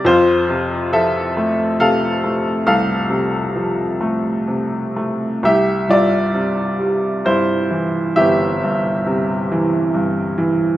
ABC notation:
X:1
M:3/4
L:1/8
Q:1/4=67
K:C
V:1 name="Upright piano"
[Fc]2 [Ae]2 [Af]2 | [Af]4- [Af] z | [Ge] [Fd]3 [Ec]2 | [Ge]4 z2 |]
V:2 name="Upright piano" clef=bass
F,, C, F, A, C, A, | C,, C, F, A, C, A, | C,, G,, C, G, G,, E, | G,,, G,, C, E, G,, E, |]